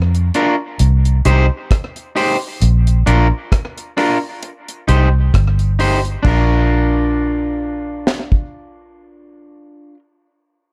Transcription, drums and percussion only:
0.15 closed hi-hat soft
0.34 closed hi-hat medium
0.79 closed hi-hat medium
1.05 closed hi-hat soft
1.25 closed hi-hat medium
1.71 kick loud
1.71 cross-stick loud
1.71 closed hi-hat medium
1.96 closed hi-hat soft
2.16 open hi-hat medium
2.62 closed hi-hat medium
2.87 closed hi-hat medium
3.07 closed hi-hat medium
3.52 kick loud
3.52 cross-stick loud
3.52 closed hi-hat medium
3.78 closed hi-hat soft
3.98 cross-stick medium
3.98 open hi-hat medium
4.43 closed hi-hat medium
4.68 closed hi-hat medium
4.89 closed hi-hat medium
5.34 kick loud
5.34 cross-stick loud
5.34 closed hi-hat medium
5.59 closed hi-hat soft
5.80 open hi-hat medium
6.05 closed hi-hat soft
6.24 kick loud
6.24 crash medium
8.07 snare medium
8.32 kick medium

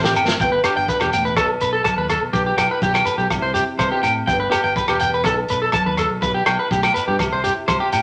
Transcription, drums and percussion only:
0.04 snare soft
0.16 low agogo medium
0.16 shekere medium
0.28 snare medium
0.40 kick loud
0.40 shekere medium
0.64 cross-stick medium
0.64 closed hi-hat soft
0.64 low agogo medium
0.64 shekere medium
0.88 kick medium
0.88 shekere medium
1.00 cross-stick medium
1.00 low agogo medium
1.13 closed hi-hat soft
1.13 shekere medium
1.26 shekere soft
1.37 kick medium
1.37 cross-stick medium
1.37 low agogo medium
1.37 shekere medium
1.61 closed hi-hat soft
1.61 shekere medium
1.85 kick medium
1.85 cross-stick medium
1.85 low agogo medium
1.85 shekere medium
2.09 cross-stick medium
2.09 closed hi-hat soft
2.09 low agogo medium
2.09 shekere medium
2.33 kick medium
2.33 shekere medium
2.58 cross-stick medium
2.58 closed hi-hat soft
2.58 low agogo medium
2.58 shekere medium
2.82 kick medium
2.82 shekere medium
2.94 cross-stick medium
2.94 low agogo medium
3.06 closed hi-hat soft
3.06 shekere medium
3.19 shekere soft
3.30 kick medium
3.30 cross-stick medium
3.30 low agogo medium
3.30 shekere medium
3.55 closed hi-hat soft
3.55 shekere medium
3.79 kick medium
3.79 cross-stick medium
3.79 low agogo medium
3.79 shekere medium
4.04 closed hi-hat soft
4.04 low agogo medium
4.04 shekere medium
4.28 kick medium
4.28 shekere medium
4.52 cross-stick medium
4.52 closed hi-hat soft
4.52 low agogo medium
4.52 shekere medium
4.76 kick medium
4.76 shekere medium
4.88 cross-stick medium
4.88 low agogo medium
5.00 closed hi-hat soft
5.00 shekere medium
5.14 shekere soft
5.24 kick medium
5.24 cross-stick medium
5.24 low agogo medium
5.24 shekere medium
5.48 closed hi-hat soft
5.48 shekere medium
5.72 kick medium
5.72 cross-stick medium
5.72 low agogo medium
5.72 shekere medium
5.97 cross-stick medium
5.97 closed hi-hat soft
5.97 low agogo medium
5.97 shekere medium
6.22 kick medium
6.22 shekere medium
6.46 cross-stick medium
6.46 closed hi-hat soft
6.46 low agogo medium
6.71 kick medium
6.71 shekere medium
6.83 cross-stick medium
6.83 low agogo medium
6.96 closed hi-hat soft
6.96 shekere medium
7.19 kick medium
7.19 cross-stick medium
7.19 low agogo medium
7.19 shekere medium
7.44 closed hi-hat soft
7.44 shekere medium
7.68 kick medium
7.68 cross-stick medium
7.68 low agogo medium
7.68 shekere medium
7.92 closed hi-hat soft
7.92 low agogo medium
7.92 shekere medium

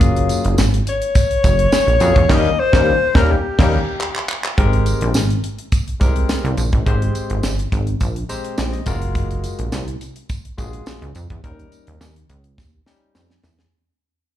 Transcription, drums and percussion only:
0.01 kick loud
0.01 closed hi-hat medium
0.01 tambourine soft
0.16 closed hi-hat medium
0.29 closed hi-hat medium
0.29 tambourine medium
0.44 closed hi-hat medium
0.58 snare medium
0.58 tambourine loud
0.74 closed hi-hat medium
0.87 closed hi-hat medium
1.02 closed hi-hat medium
1.15 kick loud
1.15 closed hi-hat loud
1.15 tambourine medium
1.31 closed hi-hat medium
1.44 kick medium
1.44 closed hi-hat medium
1.44 tambourine medium
1.59 closed hi-hat medium
1.72 snare loud
1.72 tambourine medium
1.88 closed hi-hat soft
2.00 closed hi-hat medium
2.00 tambourine medium
2.16 kick medium
2.16 closed hi-hat medium
2.29 kick loud
2.29 snare loud
2.29 crash medium
2.73 kick loud
2.73 snare loud
3.15 kick loud
3.15 snare loud
3.59 kick loud
3.59 snare loud
3.59 crash medium
4.01 clap loud
4.16 clap medium
4.29 clap loud
4.44 clap loud
4.58 kick loud
4.58 closed hi-hat medium
4.73 closed hi-hat soft
4.86 closed hi-hat medium
4.86 tambourine medium
5.01 closed hi-hat medium
5.14 snare medium
5.14 tambourine medium
5.30 closed hi-hat medium
5.44 closed hi-hat medium
5.59 closed hi-hat medium
5.72 kick loud
5.72 closed hi-hat loud
5.72 tambourine medium
5.88 closed hi-hat medium
6.01 kick loud
6.01 closed hi-hat medium
6.01 tambourine medium
6.16 closed hi-hat medium
6.29 snare loud
6.29 tambourine medium
6.45 closed hi-hat soft
6.57 closed hi-hat medium
6.57 tambourine medium
6.73 kick medium
6.73 closed hi-hat medium
6.86 kick loud
6.86 closed hi-hat medium
7.02 closed hi-hat medium
7.15 closed hi-hat medium
7.15 tambourine medium
7.30 closed hi-hat medium
7.43 snare loud
7.43 tambourine medium
7.59 closed hi-hat medium
7.72 kick loud
7.72 closed hi-hat medium
7.72 tambourine soft
7.87 closed hi-hat medium
8.00 kick loud
8.00 closed hi-hat loud
8.00 tambourine medium
8.16 closed hi-hat medium
8.29 closed hi-hat medium
8.29 tambourine medium
8.44 closed hi-hat medium
8.58 snare loud
8.58 tambourine medium
8.73 closed hi-hat soft
8.86 kick loud
8.86 closed hi-hat medium
8.86 tambourine medium
9.02 closed hi-hat medium
9.15 kick loud
9.15 closed hi-hat medium
9.31 closed hi-hat soft
9.44 closed hi-hat medium
9.44 tambourine medium
9.59 closed hi-hat medium
9.72 snare medium
9.72 tambourine medium
9.88 closed hi-hat medium
10.01 closed hi-hat medium
10.01 tambourine soft
10.16 closed hi-hat medium
10.29 kick loud
10.29 closed hi-hat medium
10.29 tambourine medium
10.45 closed hi-hat medium
10.58 kick medium
10.58 closed hi-hat medium
10.58 tambourine medium
10.73 closed hi-hat medium
10.86 snare loud
10.86 tambourine medium
11.02 closed hi-hat soft
11.15 closed hi-hat medium
11.15 tambourine medium
11.30 kick loud
11.30 closed hi-hat soft
11.44 kick loud
11.44 closed hi-hat medium
11.59 closed hi-hat soft
11.72 closed hi-hat medium
11.72 tambourine medium
11.87 closed hi-hat medium
12.01 snare medium
12.01 tambourine medium
12.16 closed hi-hat medium
12.29 closed hi-hat medium
12.44 closed hi-hat medium
12.58 kick loud
12.58 snare medium
12.58 tambourine medium
12.86 snare medium
12.86 tambourine medium
13.15 snare medium
13.15 tambourine medium
13.30 snare medium
13.44 snare loud
13.44 tambourine medium
13.59 snare medium

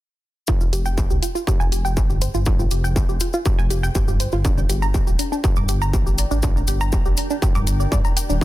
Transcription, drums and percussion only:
0.47 kick loud
0.47 cabasa medium
0.61 cabasa soft
0.73 closed hi-hat loud
0.73 cabasa medium
0.85 cabasa soft
0.98 kick loud
0.98 cabasa soft
1.10 cabasa soft
1.23 closed hi-hat loud
1.23 cabasa medium
1.35 cabasa soft
1.47 kick loud
1.47 cabasa medium
1.60 cabasa soft
1.72 closed hi-hat loud
1.72 cabasa medium
1.85 cabasa soft
1.97 kick loud
1.97 cabasa soft
2.10 cabasa soft
2.22 closed hi-hat loud
2.22 cabasa loud
2.34 cabasa soft
2.46 kick loud
2.46 cabasa medium
2.59 cabasa soft
2.71 closed hi-hat loud
2.71 cabasa medium
2.85 cabasa soft
2.96 kick loud
2.96 cabasa soft
3.09 cabasa soft
3.20 closed hi-hat loud
3.20 cabasa loud
3.33 cabasa soft
3.45 kick loud
3.45 cabasa medium
3.59 cabasa soft
3.70 closed hi-hat loud
3.70 cabasa medium
3.84 cabasa soft
3.95 kick loud
3.95 cabasa medium
4.08 cabasa soft
4.20 closed hi-hat loud
4.20 cabasa loud
4.32 cabasa soft
4.45 kick loud
4.45 cabasa medium
4.58 cabasa soft
4.69 closed hi-hat loud
4.69 cabasa loud
4.82 cabasa soft
4.94 kick loud
4.94 cabasa medium
5.07 cabasa soft
5.19 closed hi-hat loud
5.19 cabasa medium
5.32 cabasa soft
5.44 kick loud
5.44 cabasa soft
5.56 cabasa soft
5.69 closed hi-hat loud
5.69 cabasa medium
5.82 cabasa soft
5.93 kick loud
5.93 cabasa medium
6.07 cabasa soft
6.18 closed hi-hat loud
6.18 cabasa medium
6.31 cabasa soft
6.42 kick loud
6.42 cabasa medium
6.57 cabasa soft
6.67 closed hi-hat loud
6.67 cabasa medium
6.81 cabasa soft
6.92 kick loud
6.92 cabasa medium
7.05 cabasa soft
7.17 closed hi-hat loud
7.17 cabasa medium
7.30 cabasa soft
7.42 kick loud
7.42 cabasa medium
7.55 cabasa soft
7.67 closed hi-hat loud
7.67 cabasa loud
7.80 cabasa soft
7.92 kick loud
7.92 cabasa medium
8.05 cabasa soft
8.17 closed hi-hat loud
8.17 cabasa loud
8.30 cabasa soft

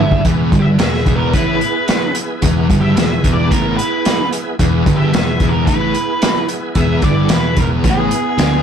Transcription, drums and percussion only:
0.11 kick medium
0.25 kick loud
0.25 closed hi-hat medium
0.52 kick loud
0.52 closed hi-hat medium
0.79 snare loud
0.79 closed hi-hat medium
0.94 snare soft
1.06 kick medium
1.06 closed hi-hat medium
1.33 kick loud
1.33 closed hi-hat medium
1.61 closed hi-hat medium
1.88 snare loud
1.88 closed hi-hat medium
2.15 closed hi-hat medium
2.42 kick medium
2.42 closed hi-hat medium
2.70 kick loud
2.70 closed hi-hat medium
2.97 snare loud
2.97 closed hi-hat loud
3.24 kick loud
3.24 closed hi-hat medium
3.51 kick loud
3.51 closed hi-hat medium
3.79 closed hi-hat medium
4.05 snare loud
4.05 closed hi-hat medium
4.32 closed hi-hat medium
4.59 kick medium
4.59 closed hi-hat medium
4.86 kick loud
4.86 closed hi-hat medium
5.14 snare loud
5.14 closed hi-hat medium
5.40 kick loud
5.40 closed hi-hat medium
5.67 kick medium
5.67 closed hi-hat medium
5.94 closed hi-hat medium
6.22 snare loud
6.22 closed hi-hat medium
6.49 closed hi-hat medium
6.75 kick medium
6.75 closed hi-hat medium
7.02 kick loud
7.02 closed hi-hat medium
7.29 snare loud
7.29 closed hi-hat medium
7.57 kick medium
7.57 closed hi-hat medium
7.84 kick loud
7.84 closed hi-hat medium
8.11 closed hi-hat medium
8.38 snare loud
8.38 closed hi-hat medium

